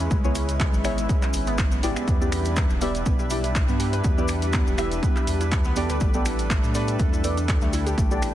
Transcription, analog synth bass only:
0.11 0.70 C#2 loud
0.73 1.06 G#1 loud
1.34 1.80 G#1 medium
1.83 1.94 G#1 medium
2.08 2.67 E2 loud
2.70 3.03 E1 loud
3.06 3.65 B1 medium
3.69 4.01 G2 loud
4.04 4.63 E2 loud
4.67 5.00 E1 loud
5.27 5.65 E2 medium
5.65 5.75 D2 medium
5.76 5.88 E2 medium
5.90 5.99 D2 loud
6.01 6.60 A1 loud
6.64 6.96 A2 loud
6.99 7.58 E2 loud
7.62 7.95 D2 medium
7.98 8.34 A1 loud

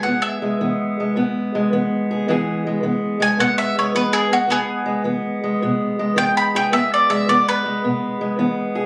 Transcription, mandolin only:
0.03 0.22 F#5 medium
0.22 1.85 E5 medium
3.22 3.39 G#5 medium
3.40 3.57 F#5 medium
3.58 3.75 E5 medium
3.79 3.95 C#5 medium
3.96 4.12 B4 medium
4.13 4.30 G#4 medium
4.33 4.50 F#4 medium
4.50 5.01 B3 medium
4.50 5.04 G#4 medium
6.18 6.35 G5 loud
6.37 6.53 B5 medium
6.56 6.72 G5 medium
6.73 6.90 E5 medium
6.94 7.09 D5 medium
7.10 7.27 E5 medium
7.29 7.46 D5 medium
7.49 8.54 B4 loud

